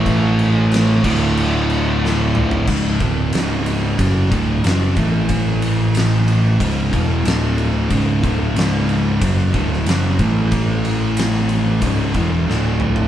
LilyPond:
<<
  \new Staff \with { instrumentName = "Distorted electric guitar" } { \clef bass \time 4/4 \key cis \minor \tempo 4 = 92 <a, e a>4. <d, a, d>2~ <d, a, d>8 | r1 | r1 | r1 |
r1 | }
  \new Staff \with { instrumentName = "Distorted electric guitar" } { \clef bass \time 4/4 \key cis \minor <a, e a>4. <d, a, d>2~ <d, a, d>8 | <cis, gis, cis>8 <d, a, d>8 <cis, gis, cis>4 <fis, cis fis>8 <d, a, d>8 <fis, cis fis>8 <a, e a>8~ | <a, e a>2 <cis, gis, cis>8 <e, b, e>8 <d, a, d>4 | <cis, gis, cis>8 <d, a, d>8 <cis, gis, cis>4 <fis, cis fis>8 <d, a, d>8 <fis, cis fis>8 <a, e a>8~ |
<a, e a>2 <cis, gis, cis>8 <e, b, e>8 <d, a, d>4 | }
  \new Staff \with { instrumentName = "Distorted electric guitar" } { \clef bass \time 4/4 \key cis \minor <a, e a>4. <d, a, d>2~ <d, a, d>8 | <cis, gis, cis>8 <d, a, d>8 <cis, gis, cis>4 <fis, cis fis>8 <d, a, d>8 <fis, cis fis>8 <a, e a>8~ | <a, e a>2 <cis, gis, cis>8 <e, b, e>8 <d, a, d>4 | <cis, gis, cis>8 <d, a, d>8 <cis, gis, cis>4 <fis, cis fis>8 <d, a, d>8 <fis, cis fis>8 <a, e a>8~ |
<a, e a>2 <cis, gis, cis>8 <e, b, e>8 <d, a, d>4 | }
  \new Staff \with { instrumentName = "Picked electric bass" } { \clef bass \time 4/4 \key cis \minor a,,4. d,,2~ d,,8 | cis,,8 d,,8 cis,,4 fis,,8 d,,8 fis,,8 a,,8~ | a,,2 cis,,8 e,,8 d,,4 | cis,,8 d,,8 cis,,4 fis,,8 d,,8 fis,,8 a,,8~ |
a,,2 cis,,8 e,,8 d,,4 | }
  \new DrumStaff \with { instrumentName = "Drums" } \drummode { \time 4/4 <cymc bd>8 cymc8 <cymc sn>8 <cymc bd>8 cymc8 cymc8 sn8 toml16 tomfh16 | <cymc bd>8 <bd cymr>8 <cymr sn>8 cymr8 <bd cymr>8 <bd cymr>8 <cymr sn>8 <bd cymr>8 | <bd cymr>8 cymr8 <cymr sn>8 cymr8 <bd cymr>8 <bd cymr>8 <cymr sn>8 cymr8 | <bd cymr>8 <bd cymr>8 <cymr sn>8 cymr8 <bd cymr>8 <bd cymr>16 sn16 <cymr sn>8 <bd cymr>8 |
<bd cymr>8 cymr8 <cymr sn>8 cymr8 <bd cymr>8 <bd cymr>8 sn8 toml16 tomfh16 | }
>>